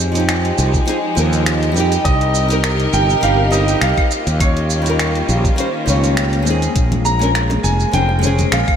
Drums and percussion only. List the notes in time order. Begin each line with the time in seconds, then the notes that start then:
0.00 shaker
0.15 closed hi-hat, shaker
0.29 finger snap, closed hi-hat, claves, shaker
0.45 closed hi-hat
0.58 shaker
0.74 kick, shaker
0.88 closed hi-hat, shaker
1.17 shaker
1.33 closed hi-hat, shaker
1.46 finger snap, closed hi-hat, shaker
1.63 closed hi-hat
1.76 shaker
1.92 closed hi-hat, shaker
2.05 kick, closed hi-hat, shaker
2.21 closed hi-hat
2.35 shaker
2.50 closed hi-hat, shaker
2.64 finger snap, closed hi-hat, shaker
2.80 closed hi-hat
2.93 shaker
3.10 shaker
3.23 closed hi-hat, shaker
3.52 shaker
3.68 closed hi-hat, shaker
3.81 finger snap, closed hi-hat, claves, shaker
3.98 kick, closed hi-hat, claves
4.11 shaker
4.27 closed hi-hat, shaker
4.40 kick, closed hi-hat, claves, shaker
4.57 closed hi-hat
4.70 shaker
4.86 closed hi-hat, shaker
4.99 finger snap, closed hi-hat, claves, shaker
5.15 closed hi-hat
5.29 shaker
5.45 kick, closed hi-hat, shaker
5.58 closed hi-hat, shaker
5.88 shaker
6.04 closed hi-hat, shaker
6.17 finger snap, closed hi-hat, shaker
6.33 closed hi-hat
6.47 shaker
6.62 closed hi-hat, shaker
6.76 kick, closed hi-hat, shaker
6.92 closed hi-hat, high conga
7.05 high bongo, shaker
7.22 closed hi-hat, shaker
7.35 finger snap, closed hi-hat, shaker
7.50 closed hi-hat, high bongo, high conga
7.64 shaker
7.80 shaker
7.93 closed hi-hat, high conga, shaker
8.09 high bongo
8.22 low conga, shaker
8.39 closed hi-hat, high conga, low conga, shaker
8.52 finger snap, closed hi-hat, high bongo, claves, shaker
8.68 kick, closed hi-hat, claves